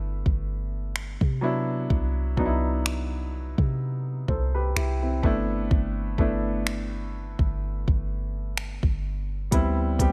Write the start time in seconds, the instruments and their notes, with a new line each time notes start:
Already playing: 808-style bass G1, grand piano A3 B3 D4 E4
0.26 808-style bass G1, kick
0.96 finger snap
1.21 808-style bass C3, kick
1.41 grand piano F#3 B3 D4 E4
1.90 808-style bass C2, kick
2.37 808-style bass C2, grand piano F#3 B3 D4 D#4, kick
2.46 grand piano E4
2.86 finger snap
3.58 808-style bass C3, kick
4.28 808-style bass C2, grand piano A4 C5, kick
4.55 grand piano G4 B4
4.76 808-style bass C2, grand piano E4 G4, finger snap
5.02 grand piano C4 E4
5.23 808-style bass G1, grand piano A3 B3 D4 E4, kick
5.71 808-style bass G1, kick
6.18 808-style bass G1, grand piano A3 B3 D4 E4, kick
6.67 finger snap
7.39 808-style bass G1, kick
7.88 808-style bass G1, kick
8.57 finger snap
8.83 808-style bass G1, kick
9.51 808-style bass D2, grand piano G3 B3 C4 E4, kick, closed hi-hat
9.99 808-style bass D2, grand piano G3 B3 C4 G4, kick, closed hi-hat